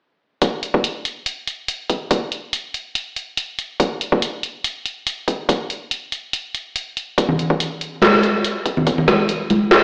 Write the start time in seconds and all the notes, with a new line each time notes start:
0.42 kick, closed hi-hat
0.63 closed hi-hat
0.74 kick
0.84 closed hi-hat
1.05 closed hi-hat
1.26 closed hi-hat
1.47 closed hi-hat
1.68 closed hi-hat
1.90 kick, closed hi-hat
2.11 kick, closed hi-hat
2.32 closed hi-hat
2.53 closed hi-hat
2.74 closed hi-hat
2.95 closed hi-hat
3.16 closed hi-hat
3.37 closed hi-hat
3.59 closed hi-hat
3.80 kick, closed hi-hat
4.01 closed hi-hat
4.12 kick
4.22 closed hi-hat
4.43 closed hi-hat
4.64 closed hi-hat
4.86 closed hi-hat
5.07 closed hi-hat
5.28 kick, closed hi-hat
5.49 kick, closed hi-hat
5.70 closed hi-hat
5.91 closed hi-hat
6.12 closed hi-hat
6.33 closed hi-hat
6.55 closed hi-hat
6.76 closed hi-hat
6.97 closed hi-hat
7.18 kick, closed hi-hat
7.29 low conga
7.39 closed hi-hat
7.50 kick
7.60 closed hi-hat
7.81 closed hi-hat
8.02 snare, closed hi-hat, high conga
8.23 closed hi-hat
8.44 closed hi-hat
8.66 kick, closed hi-hat
8.77 low conga
8.87 kick, closed hi-hat
8.98 low conga
9.08 snare, closed hi-hat, high conga
9.29 closed hi-hat
9.50 closed hi-hat, high conga
9.71 snare, closed hi-hat